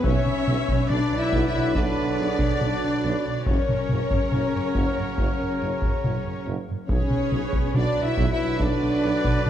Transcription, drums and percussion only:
0.04 taiko
0.26 taiko mid
0.48 taiko mid
0.69 taiko
0.90 taiko mid
1.33 taiko
1.75 taiko
2.39 taiko
2.61 taiko mid
3.46 taiko
3.69 taiko mid
3.89 taiko mid
4.11 taiko
4.32 taiko mid
4.75 taiko
5.18 taiko
5.82 taiko
6.04 taiko mid
6.89 taiko
7.10 taiko mid
7.32 taiko mid
7.53 taiko
7.74 taiko mid
8.17 taiko
8.60 taiko
9.25 taiko
9.46 taiko mid

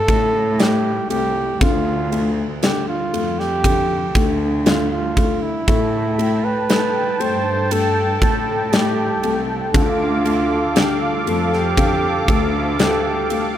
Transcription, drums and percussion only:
0.08 kick, ride
0.59 snare, ride
1.10 ride
1.61 kick, ride
2.12 ride
2.63 snare, ride
3.14 ride
3.40 snare
3.64 kick, ride
4.15 kick, ride
4.66 snare, ride
5.17 kick, ride
5.68 kick, ride
6.19 ride
6.69 snare, ride
7.21 ride
7.71 ride
8.22 kick, ride
8.73 snare, ride
9.23 ride
9.74 kick, ride
10.25 ride
10.76 snare, ride
11.27 ride
11.53 snare
11.77 kick, ride
12.28 kick, ride
12.79 snare, ride
13.30 ride

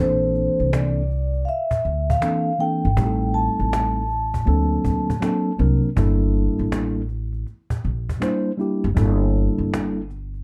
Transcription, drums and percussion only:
0.22 cajon slap
0.35 cajon slap
0.59 cajon slap
0.73 cajon slap
1.10 cajon slap
1.34 cajon slap
1.48 cajon slap
1.71 cajon bass
1.84 cajon slap
2.10 cajon bass
2.22 cajon slap
2.60 cajon slap
2.84 cajon slap
2.97 cajon bass
3.21 cajon slap
3.34 cajon slap
3.59 cajon slap
3.73 cajon slap
4.10 cajon slap
4.34 cajon bass
4.85 cajon bass
5.10 cajon bass
5.22 cajon slap
5.60 cajon slap
5.85 cajon slap
5.97 cajon bass
6.21 cajon slap
6.34 cajon slap
6.58 cajon slap
6.72 cajon slap
7.09 cajon slap
7.33 cajon slap
7.47 cajon slap
7.70 cajon bass
7.83 cajon slap
8.09 cajon bass
8.22 cajon slap
8.60 cajon slap
8.84 cajon slap
8.97 cajon bass
9.34 cajon slap
9.58 cajon slap
9.74 cajon slap
9.97 cajon slap
10.10 cajon slap
10.34 cajon slap

